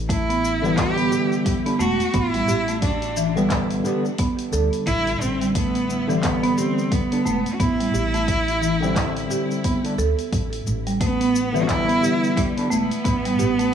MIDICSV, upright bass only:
0, 0, Header, 1, 2, 480
1, 0, Start_track
1, 0, Key_signature, 0, "minor"
1, 0, Tempo, 681818
1, 1510, Time_signature, 4, 2, 24, 8
1, 9673, End_track
2, 0, Start_track
2, 0, Title_t, "Upright bass"
2, 0, Program_c, 0, 32
2, 0, Note_on_c, 0, 33, 97
2, 746, Note_off_c, 0, 33, 0
2, 1266, Note_on_c, 0, 28, 80
2, 1371, Note_off_c, 0, 28, 0
2, 1506, Note_on_c, 0, 33, 97
2, 1695, Note_off_c, 0, 33, 0
2, 1745, Note_on_c, 0, 33, 100
2, 2665, Note_off_c, 0, 33, 0
2, 3190, Note_on_c, 0, 38, 94
2, 3294, Note_off_c, 0, 38, 0
2, 3429, Note_on_c, 0, 33, 103
2, 3616, Note_off_c, 0, 33, 0
2, 3671, Note_on_c, 0, 33, 89
2, 4588, Note_off_c, 0, 33, 0
2, 5110, Note_on_c, 0, 28, 85
2, 5213, Note_off_c, 0, 28, 0
2, 5347, Note_on_c, 0, 33, 94
2, 5535, Note_off_c, 0, 33, 0
2, 5593, Note_on_c, 0, 33, 96
2, 6509, Note_off_c, 0, 33, 0
2, 7027, Note_on_c, 0, 38, 98
2, 7132, Note_off_c, 0, 38, 0
2, 7268, Note_on_c, 0, 33, 94
2, 7456, Note_off_c, 0, 33, 0
2, 7509, Note_on_c, 0, 33, 93
2, 8427, Note_off_c, 0, 33, 0
2, 8950, Note_on_c, 0, 28, 76
2, 9054, Note_off_c, 0, 28, 0
2, 9188, Note_on_c, 0, 33, 98
2, 9376, Note_off_c, 0, 33, 0
2, 9430, Note_on_c, 0, 33, 96
2, 9673, Note_off_c, 0, 33, 0
2, 9673, End_track
0, 0, End_of_file